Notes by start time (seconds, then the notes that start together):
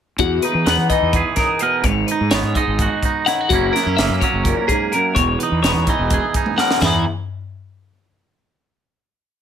0.18 E2 F#4, kick, closed hi-hat
0.42 D#4 B4, closed hi-hat
0.54 E3
0.66 E2 B3 F#5, snare, closed hi-hat
0.78 E3
0.90 E3 D#4 D#5, kick, closed hi-hat
1.02 E2
1.13 G#4 B4, kick, closed hi-hat
1.36 D#4 A#4, kick, snare, closed hi-hat
1.59 B2 A#4 B4, closed hi-hat
1.83 G#1 G#2 C#5, kick, closed hi-hat
2.07 B4, closed hi-hat
2.11 D#4
2.21 G#2
2.31 G#1 B3 C#5, snare, closed hi-hat
2.43 G#2
2.55 G#3 D#4 D#5, kick, closed hi-hat
2.67 G#1
2.79 F#4, kick, closed hi-hat
3.03 D#4, kick, closed hi-hat
3.26 D#3 E4 F#5, snare, closed hi-hat
3.41 F#4
3.49 F#1 F#2 F#3 A#3 F#4, kick, closed hi-hat
3.54 C#4 E4
3.73 B3 A#4, snare, closed hi-hat
3.86 F#2 C#4
3.97 F#1 A#3 E5, snare, closed hi-hat
4.09 F#2
4.21 F#3 C#4 C#5, kick, closed hi-hat
4.33 F#1
4.44 A#2 A#4, kick, closed hi-hat
4.68 G#2 G#4, kick, closed hi-hat
4.92 F#2 A#4, closed hi-hat
5.15 E1 E2 C#5, kick, closed hi-hat
5.39 D#4 B4, closed hi-hat
5.52 E2
5.63 E1 B3 C#5, snare, closed hi-hat
5.74 E2
5.87 E3 D#4 D#5, kick, closed hi-hat
5.99 E1
6.10 G#4, kick, closed hi-hat
6.34 D#4, kick, closed hi-hat
6.46 high tom
6.58 B2 A#4 F#5, snare
6.71 snare
6.81 E2 E3 E4, snare, floor tom, china
6.86 B3 D#4 G#4